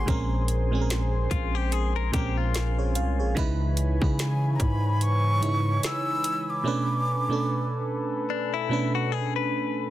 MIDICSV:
0, 0, Header, 1, 7, 480
1, 0, Start_track
1, 0, Tempo, 821918
1, 47, Time_signature, 4, 2, 24, 8
1, 5782, End_track
2, 0, Start_track
2, 0, Title_t, "Flute"
2, 0, Program_c, 0, 73
2, 0, Note_on_c, 0, 84, 99
2, 290, Note_off_c, 0, 84, 0
2, 2459, Note_on_c, 0, 80, 83
2, 2661, Note_on_c, 0, 82, 70
2, 2670, Note_off_c, 0, 80, 0
2, 2698, Note_on_c, 0, 83, 90
2, 2707, Note_off_c, 0, 82, 0
2, 2937, Note_on_c, 0, 85, 108
2, 2945, Note_off_c, 0, 83, 0
2, 3412, Note_off_c, 0, 85, 0
2, 3416, Note_on_c, 0, 88, 109
2, 3795, Note_on_c, 0, 86, 97
2, 3804, Note_off_c, 0, 88, 0
2, 4750, Note_off_c, 0, 86, 0
2, 5782, End_track
3, 0, Start_track
3, 0, Title_t, "Analog synth pad"
3, 0, Program_c, 1, 89
3, 0, Note_on_c, 1, 68, 78
3, 0, Note_on_c, 1, 80, 74
3, 45, Note_on_c, 1, 84, 91
3, 46, Note_on_c, 1, 72, 76
3, 1944, Note_off_c, 1, 68, 0
3, 1944, Note_off_c, 1, 80, 0
3, 1946, Note_off_c, 1, 84, 0
3, 1947, Note_off_c, 1, 72, 0
3, 1966, Note_on_c, 1, 73, 70
3, 1966, Note_on_c, 1, 80, 85
3, 1966, Note_on_c, 1, 83, 72
3, 1967, Note_on_c, 1, 52, 78
3, 3867, Note_off_c, 1, 73, 0
3, 3868, Note_off_c, 1, 52, 0
3, 3886, Note_on_c, 1, 69, 83
3, 3886, Note_on_c, 1, 71, 71
3, 5782, Note_off_c, 1, 69, 0
3, 5782, Note_off_c, 1, 71, 0
3, 5782, Note_off_c, 1, 80, 0
3, 5782, Note_off_c, 1, 83, 0
3, 5782, End_track
4, 0, Start_track
4, 0, Title_t, "Clean electric guitar"
4, 0, Program_c, 2, 27
4, 766, Note_on_c, 2, 65, 72
4, 905, Note_off_c, 2, 65, 0
4, 905, Note_on_c, 2, 67, 76
4, 1006, Note_off_c, 2, 67, 0
4, 1006, Note_on_c, 2, 68, 82
4, 1139, Note_off_c, 2, 68, 0
4, 1145, Note_on_c, 2, 70, 86
4, 1241, Note_off_c, 2, 70, 0
4, 1246, Note_on_c, 2, 67, 82
4, 1378, Note_off_c, 2, 67, 0
4, 1386, Note_on_c, 2, 65, 73
4, 1943, Note_off_c, 2, 65, 0
4, 4847, Note_on_c, 2, 62, 72
4, 4979, Note_off_c, 2, 62, 0
4, 4985, Note_on_c, 2, 64, 88
4, 5214, Note_off_c, 2, 64, 0
4, 5226, Note_on_c, 2, 66, 86
4, 5326, Note_off_c, 2, 66, 0
4, 5326, Note_on_c, 2, 68, 84
4, 5459, Note_off_c, 2, 68, 0
4, 5466, Note_on_c, 2, 71, 73
4, 5782, Note_off_c, 2, 71, 0
4, 5782, End_track
5, 0, Start_track
5, 0, Title_t, "FM electric piano"
5, 0, Program_c, 3, 5
5, 0, Control_c, 3, 64, 127
5, 0, Note_on_c, 3, 44, 71
5, 0, Note_on_c, 3, 59, 68
5, 0, Note_on_c, 3, 71, 64
5, 34, Note_on_c, 3, 46, 91
5, 40, Note_on_c, 3, 56, 86
5, 47, Note_on_c, 3, 60, 87
5, 52, Note_on_c, 3, 61, 87
5, 55, Control_c, 3, 64, 0
5, 58, Note_on_c, 3, 70, 107
5, 60, Note_off_c, 3, 44, 0
5, 60, Note_off_c, 3, 59, 0
5, 60, Note_off_c, 3, 71, 0
5, 148, Control_c, 3, 64, 127
5, 380, Note_off_c, 3, 46, 0
5, 383, Note_off_c, 3, 56, 0
5, 386, Note_off_c, 3, 60, 0
5, 389, Note_off_c, 3, 61, 0
5, 392, Note_off_c, 3, 70, 0
5, 414, Note_on_c, 3, 46, 88
5, 420, Note_on_c, 3, 56, 81
5, 425, Note_on_c, 3, 60, 80
5, 432, Note_on_c, 3, 61, 77
5, 438, Note_on_c, 3, 68, 80
5, 464, Note_off_c, 3, 68, 0
5, 476, Note_on_c, 3, 70, 95
5, 1174, Note_off_c, 3, 46, 0
5, 1177, Note_off_c, 3, 56, 0
5, 1180, Note_off_c, 3, 60, 0
5, 1183, Note_off_c, 3, 61, 0
5, 1205, Note_off_c, 3, 70, 0
5, 1236, Note_on_c, 3, 46, 94
5, 1241, Note_on_c, 3, 56, 77
5, 1248, Note_on_c, 3, 60, 85
5, 1253, Note_on_c, 3, 61, 81
5, 1259, Note_on_c, 3, 70, 101
5, 1493, Note_off_c, 3, 70, 0
5, 1626, Note_on_c, 3, 73, 70
5, 1630, Note_on_c, 3, 68, 57
5, 1722, Note_off_c, 3, 73, 0
5, 1724, Note_off_c, 3, 68, 0
5, 1728, Note_on_c, 3, 77, 74
5, 1731, Note_on_c, 3, 72, 66
5, 1859, Note_off_c, 3, 77, 0
5, 1861, Note_off_c, 3, 72, 0
5, 1866, Note_on_c, 3, 73, 67
5, 1869, Note_on_c, 3, 68, 59
5, 1904, Note_off_c, 3, 46, 0
5, 1907, Note_off_c, 3, 56, 0
5, 1910, Note_off_c, 3, 60, 0
5, 1913, Note_off_c, 3, 61, 0
5, 1955, Note_on_c, 3, 49, 120
5, 1961, Note_on_c, 3, 56, 102
5, 1967, Note_on_c, 3, 63, 101
5, 1972, Note_on_c, 3, 64, 107
5, 1974, Control_c, 3, 64, 0
5, 1978, Note_on_c, 3, 71, 126
5, 2067, Control_c, 3, 64, 127
5, 2094, Note_off_c, 3, 73, 0
5, 2095, Note_off_c, 3, 68, 0
5, 2301, Note_off_c, 3, 49, 0
5, 2304, Note_off_c, 3, 56, 0
5, 2306, Note_off_c, 3, 63, 0
5, 2309, Note_off_c, 3, 64, 0
5, 2312, Note_off_c, 3, 71, 0
5, 2335, Note_on_c, 3, 49, 74
5, 2341, Note_on_c, 3, 56, 72
5, 2347, Note_on_c, 3, 63, 70
5, 2353, Note_on_c, 3, 64, 68
5, 2359, Note_on_c, 3, 71, 87
5, 3094, Note_off_c, 3, 49, 0
5, 3097, Note_off_c, 3, 56, 0
5, 3100, Note_off_c, 3, 63, 0
5, 3103, Note_off_c, 3, 64, 0
5, 3106, Note_off_c, 3, 71, 0
5, 3157, Note_on_c, 3, 49, 74
5, 3163, Note_on_c, 3, 56, 69
5, 3168, Note_on_c, 3, 63, 74
5, 3174, Note_on_c, 3, 64, 71
5, 3181, Note_on_c, 3, 73, 80
5, 3825, Note_off_c, 3, 49, 0
5, 3828, Note_off_c, 3, 56, 0
5, 3830, Note_off_c, 3, 63, 0
5, 3833, Note_off_c, 3, 64, 0
5, 3837, Note_off_c, 3, 73, 0
5, 3875, Note_on_c, 3, 47, 97
5, 3880, Note_on_c, 3, 57, 90
5, 3886, Note_on_c, 3, 61, 94
5, 3892, Note_on_c, 3, 62, 87
5, 3894, Control_c, 3, 64, 0
5, 3898, Note_on_c, 3, 71, 106
5, 4006, Control_c, 3, 64, 127
5, 4221, Note_off_c, 3, 47, 0
5, 4223, Note_off_c, 3, 57, 0
5, 4226, Note_off_c, 3, 61, 0
5, 4229, Note_off_c, 3, 62, 0
5, 4232, Note_off_c, 3, 71, 0
5, 4255, Note_on_c, 3, 47, 77
5, 4260, Note_on_c, 3, 57, 66
5, 4267, Note_on_c, 3, 61, 66
5, 4272, Note_on_c, 3, 62, 69
5, 4278, Note_on_c, 3, 69, 85
5, 5015, Note_off_c, 3, 47, 0
5, 5017, Note_off_c, 3, 57, 0
5, 5020, Note_off_c, 3, 61, 0
5, 5023, Note_off_c, 3, 62, 0
5, 5026, Note_off_c, 3, 69, 0
5, 5075, Note_on_c, 3, 47, 91
5, 5081, Note_on_c, 3, 57, 82
5, 5086, Note_on_c, 3, 61, 86
5, 5092, Note_on_c, 3, 62, 83
5, 5099, Note_on_c, 3, 71, 95
5, 5744, Note_off_c, 3, 47, 0
5, 5746, Note_off_c, 3, 57, 0
5, 5749, Note_off_c, 3, 61, 0
5, 5752, Note_off_c, 3, 62, 0
5, 5755, Note_off_c, 3, 71, 0
5, 5782, End_track
6, 0, Start_track
6, 0, Title_t, "808-style bass"
6, 0, Program_c, 4, 38
6, 47, Note_on_c, 4, 34, 109
6, 744, Note_off_c, 4, 34, 0
6, 766, Note_on_c, 4, 34, 102
6, 1227, Note_off_c, 4, 34, 0
6, 1249, Note_on_c, 4, 34, 109
6, 1731, Note_on_c, 4, 36, 95
6, 1740, Note_off_c, 4, 34, 0
6, 1870, Note_on_c, 4, 34, 93
6, 1879, Note_off_c, 4, 36, 0
6, 1964, Note_off_c, 4, 34, 0
6, 1968, Note_on_c, 4, 37, 111
6, 2331, Note_off_c, 4, 37, 0
6, 2347, Note_on_c, 4, 49, 100
6, 2674, Note_off_c, 4, 49, 0
6, 2686, Note_on_c, 4, 44, 106
6, 3383, Note_off_c, 4, 44, 0
6, 5782, End_track
7, 0, Start_track
7, 0, Title_t, "Drums"
7, 46, Note_on_c, 9, 36, 107
7, 46, Note_on_c, 9, 42, 67
7, 105, Note_off_c, 9, 36, 0
7, 105, Note_off_c, 9, 42, 0
7, 282, Note_on_c, 9, 42, 63
7, 340, Note_off_c, 9, 42, 0
7, 527, Note_on_c, 9, 42, 70
7, 531, Note_on_c, 9, 38, 105
7, 586, Note_off_c, 9, 42, 0
7, 590, Note_off_c, 9, 38, 0
7, 764, Note_on_c, 9, 36, 88
7, 766, Note_on_c, 9, 42, 65
7, 823, Note_off_c, 9, 36, 0
7, 824, Note_off_c, 9, 42, 0
7, 1005, Note_on_c, 9, 42, 60
7, 1063, Note_off_c, 9, 42, 0
7, 1247, Note_on_c, 9, 42, 68
7, 1248, Note_on_c, 9, 36, 87
7, 1305, Note_off_c, 9, 42, 0
7, 1306, Note_off_c, 9, 36, 0
7, 1486, Note_on_c, 9, 42, 67
7, 1492, Note_on_c, 9, 38, 105
7, 1545, Note_off_c, 9, 42, 0
7, 1550, Note_off_c, 9, 38, 0
7, 1725, Note_on_c, 9, 42, 77
7, 1783, Note_off_c, 9, 42, 0
7, 1966, Note_on_c, 9, 36, 116
7, 1966, Note_on_c, 9, 42, 70
7, 2025, Note_off_c, 9, 36, 0
7, 2025, Note_off_c, 9, 42, 0
7, 2202, Note_on_c, 9, 42, 68
7, 2260, Note_off_c, 9, 42, 0
7, 2345, Note_on_c, 9, 36, 88
7, 2404, Note_off_c, 9, 36, 0
7, 2448, Note_on_c, 9, 42, 69
7, 2451, Note_on_c, 9, 38, 106
7, 2506, Note_off_c, 9, 42, 0
7, 2510, Note_off_c, 9, 38, 0
7, 2685, Note_on_c, 9, 36, 87
7, 2686, Note_on_c, 9, 42, 64
7, 2743, Note_off_c, 9, 36, 0
7, 2744, Note_off_c, 9, 42, 0
7, 2926, Note_on_c, 9, 42, 62
7, 2985, Note_off_c, 9, 42, 0
7, 3168, Note_on_c, 9, 42, 72
7, 3227, Note_off_c, 9, 42, 0
7, 3407, Note_on_c, 9, 42, 68
7, 3413, Note_on_c, 9, 38, 111
7, 3465, Note_off_c, 9, 42, 0
7, 3471, Note_off_c, 9, 38, 0
7, 3645, Note_on_c, 9, 42, 75
7, 3704, Note_off_c, 9, 42, 0
7, 5782, End_track
0, 0, End_of_file